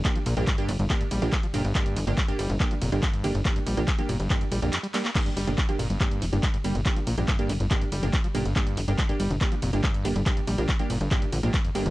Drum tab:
CC |----------------|----------------|----------------|x---------------|
RD |x-x-x-x-x-x-x-x-|x-x-x-x-x-x-x-x-|x-x-x-x-x-x-x-x-|x-x-x-x-x-x-x-x-|
HH |xxoxxxoxxxoxxxox|xxoxxxoxxxoxxxox|xxoxxxoxxxoxxxox|xxoxxxoxxxoxxxox|
CP |x---x---x---x---|x---x---x---x---|x---x---x---x-xx|x---x---x---x---|
BD |o---o---o---o---|o---o---o---o---|o---o---o-------|o---o---o---o---|

CC |----------------|----------------|----------------|
RD |x-x-x-x-x-x-x-x-|x-x-x-x-x-x-x-x-|x-x-x-x-x-x-x-x-|
HH |xxoxxxoxxxoxxxox|xxoxxxoxxxoxxxox|xxoxxxoxxxoxxxox|
CP |x---x---x---x---|x---x---x---x---|x---x---x---x---|
BD |o---o---o---o---|o---o---o---o---|o---o---o---o---|